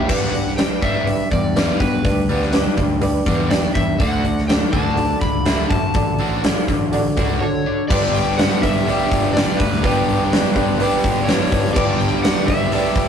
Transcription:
0.07 G2 G3 B3 D4 G4 B4 D5 F#5, kick, crash
0.33 G3 D4, open hi-hat
0.47 snare
0.56 G3 D4 G4 B4 D5 G5, snare, open hi-hat
0.82 G2 G3 B3 D4 E5, kick, open hi-hat
1.05 G3 D4 G4 B4 D5, open hi-hat
1.31 E2 G3 D4 D5, kick, open hi-hat
1.55 G3 B3 D4 G4 B4 D5, snare, open hi-hat
1.80 B2 G3 D4 B4, kick, open hi-hat
2.03 D2 G3 D4 G4 B4 D5, kick, open hi-hat
2.29 G3 B3 D4, open hi-hat
2.42 snare
2.52 G3 D4 G4 B4 D5, snare, open hi-hat
2.77 D2 G3 D4, kick, open hi-hat
3.01 G3 D4 G4 B4 D5, open hi-hat
3.26 E2 G3 B3 D4, kick, open hi-hat
3.50 G3 D4 G4 B4 D5, snare, open hi-hat
3.74 E2 G3 D4 E5, kick, open hi-hat
3.98 D2 D3 D4 F#4 A4 D5 F#5, kick, open hi-hat
4.25 D3 D4, open hi-hat
4.38 snare
4.47 D3 D4 F#4 A4 D5 G5, snare, open hi-hat
4.72 D2 D3 D4 F#4 A5, kick, open hi-hat
4.94 D3 F#4 A4 D5, open hi-hat
4.99 D4
5.21 C#2 D3 D4 B5, kick, open hi-hat
5.44 D3 D4 F#4 A4 E5, snare, open hi-hat
5.69 F#2 D3 D4 A5, kick, open hi-hat
5.93 A1 D3 D4 F#4 A4 D5, kick, open hi-hat
6.19 D3 D4 F#4, open hi-hat
6.43 D3 D4 F#4 A4 D5, snare, open hi-hat
6.68 A1 D3 D4, kick, open hi-hat
6.91 D3 D4 F#4 A4 D5, open hi-hat
7.17 C#2 D3 D4 F#4, kick, open hi-hat
7.40 D3 D4 F#4 A4 C#5
7.66 D3 D4
7.88 G1 G2 D3 G3 G4 B4 D5, kick, crash
7.92 G3 B3 D4 G4
8.14 G5, open hi-hat
8.37 G4 B4 D5 F#5, snare, open hi-hat
8.62 G2 D3 G3 G4 B4 D5 E5, kick, open hi-hat
8.86 G2 D3 G3 B3 D4 G4 B4 D5, open hi-hat
8.90 G4
9.11 G1, kick, open hi-hat
9.33 G2 G4 B4 D5, snare, open hi-hat
9.38 D3 G3
9.57 D2 B4, kick, open hi-hat
9.73 snare
9.82 G1 G2 D3 G3 B3 D4 G4 B4 D5, kick, open hi-hat
9.87 G3 G4
10.09 open hi-hat
10.31 G4 B4 D5, snare, open hi-hat
10.55 G2 D3 G3 G4 B4 D5, kick, open hi-hat
10.79 G2 D3 G3 B3 D4 G4 B4 D5, open hi-hat
10.83 G4
11.03 G1, kick, open hi-hat
11.25 G2 D4 G4 B4 C#5, snare, open hi-hat
11.29 D3 G3
11.52 G1, kick, open hi-hat
11.66 snare
11.74 G1 G2 D3 G3 G4 B4 D5, kick, crash
11.78 G3 B3 D4 G4
11.98 G5, open hi-hat
12.23 G4 B4 D5 F#5, snare, open hi-hat
12.46 G2 D3 G3 G4 B4 E5, kick, open hi-hat
12.50 G2 D5
12.72 G2 D3 G3 B3 D4 G4 B4 D5, open hi-hat
12.95 G1, kick, open hi-hat

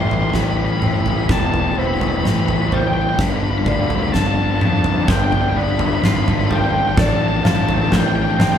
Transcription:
Already playing: A1 A2 G3 A3 G4 A4 C5 E5
0.03 A2 E3
0.07 A2 E3 C6, floor tom
0.14 A2 E3 C6
0.22 A2 C6
0.26 E3 C6
0.33 A1 A2 E3 G3 A4 B5, snare, floor tom
0.39 A2 E3 B5
0.48 A2 E3 B5
0.56 A2 E3 B5
0.64 A2 E3 B5
0.71 A2 E3 B5
0.79 A2 E3 C4 B5, mid tom
0.87 A2 E3 B5
0.94 A2 E3 B5
1.02 A2 E3 B5, floor tom
1.09 A2 E3 B5
1.17 A2 E3 B5
1.26 E1 A2 E3 A4, kick, snare, floor tom
1.30 A2 E3 G3 A5
1.38 A2 A5
1.42 E3 A5
1.49 A2 E3 A5
1.54 A2 E3, floor tom
1.60 A5
1.64 A2 E3 A5
1.72 A2 E3
1.77 A2 C4 C5 B5
1.82 E3
1.87 A2 E3 B5
1.94 A2 E3 B5
2.01 A2 E3 B5, floor tom
2.08 A2 E3 B5
2.17 A2 E3 B5
2.23 A1 A2 E3 B5, snare, mid tom
2.32 A2 E3 B5
2.40 A2 E3 B5
2.46 A2 B5, floor tom
2.50 E3 B5
2.58 A2 E3 B5
2.65 A2 E3 B5
2.72 A2 E3 G3 C5 G5, floor tom
2.80 A2 E3 G5
2.88 A2 E3 G5
2.94 A2 E3 G5
3.02 A2 E3 G5
3.09 A2 E3 G5
3.19 G1 G2 D3 G3 D5 F5 B5, kick, snare, floor tom
3.27 G2 D3 B5
3.34 G2 D3 B5
3.42 G2 D3 B5
3.50 G2 D3 B5
3.57 G2 D3 B5
3.65 D2 G2 D3 D5 B5, kick, floor tom, mid tom
3.73 G2 D3 B5
3.81 G2 D3 B5
3.88 G2 D3 B5, floor tom
3.96 G2 D3 B5
4.03 G2 D3 B5
4.10 G1 G2 D3 A5 B5, snare, floor tom
4.15 D3 F3
4.20 G2 A5
4.27 G2 D3 A5
4.35 G2 D3 A5
4.42 G2 D3 A5
4.51 G2 D3 A5
4.58 F2 G2 D3 B3 A5, mid tom
4.65 G2 D3 A5
4.74 G2 D3 A5
4.81 G2 D3 A5, floor tom
4.88 G2 D3 A5
4.96 G2 D3 A5
5.03 G2 D3 A5
5.08 G1 F3 E5 G5, kick, snare, floor tom
5.12 G2 D3 G5
5.19 G2 D3
5.24 D3 G5
5.28 G2
5.32 G2 D3 G5, floor tom
5.41 G2 D3 G5
5.49 G2 D3 G5
5.56 G1 G2 D3 B3 D5 B5
5.63 G2 D3 B5
5.71 G2 D3 B5
5.79 G2 D3 B5, floor tom
5.87 G2 D3 B5
5.95 G2 D3 B5
6.02 G#1 G2 D3 F4 B5, snare, mid tom
6.09 D3 B5
6.13 G2 B5
6.20 G2 D3 B5
6.27 G2 D3, floor tom, mid tom
6.31 D3 B5
6.36 G2 B5
6.43 G2 D3 B5
6.50 G2 D3 F3 A4 G5, floor tom
6.57 G2 D3 G5
6.64 G2 D3 G5
6.71 G2 D3 G5
6.79 D3 G5
6.83 G2
6.88 G2 D3 G5
6.97 A1 A2 D3 A3 F4 D5 G5 A5, kick, snare, floor tom
7.04 A2 D3 A5
7.13 A2 D3 A5
7.20 A2 D3 A5
7.28 A2 D3 A5
7.35 A2 D3 A5
7.43 A1 A2 D3 F3 F5 A5, snare, mid tom
7.51 A2 D3 A5
7.59 A2 D3 A5
7.66 A2 D3 A5, floor tom
7.73 A2 D3 A5
7.81 A2 D3 A5
7.88 A1 A2 D3 F3 A4 G5 A5, snare, floor tom
7.97 A2 D3 G5
8.05 A2 D3 G5
8.13 A2 D3 G5
8.20 A2 D3 G5
8.28 A2 D3 G5
8.37 A2 D3 C4 G5, snare, mid tom
8.45 A2 D3 G5
8.51 A2 D3 G5

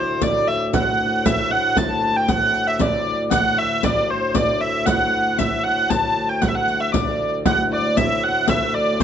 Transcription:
Already playing: D2 A2 C5
0.22 D5, riq, frame drum
0.48 E5, frame drum
0.73 F#5, riq, frame drum
1.26 E5, riq, frame drum
1.51 F#5, frame drum
1.77 A5, riq, frame drum
2.17 G5
2.28 F#5, riq, frame drum
2.54 riq
2.68 E5
2.79 D5, riq, frame drum
3.31 D2 A2 F#5, riq, frame drum
3.59 E5, frame drum
3.83 D5, riq, frame drum
4.10 C5
4.35 D5, riq, frame drum
4.61 E5, frame drum
4.86 F#5, riq, frame drum
5.39 E5, riq, frame drum
5.64 F#5, frame drum
5.90 A5, riq, frame drum
6.29 G5
6.42 F#5, riq, frame drum
6.49 E5
6.55 F#5
6.68 riq
6.81 E5
6.92 D5, riq, frame drum
7.45 D2 A2 F#5, riq, frame drum
7.73 D5
7.97 E5, riq, frame drum
8.24 F#5
8.48 E5, riq, frame drum
8.74 D5
9.00 riq, frame drum

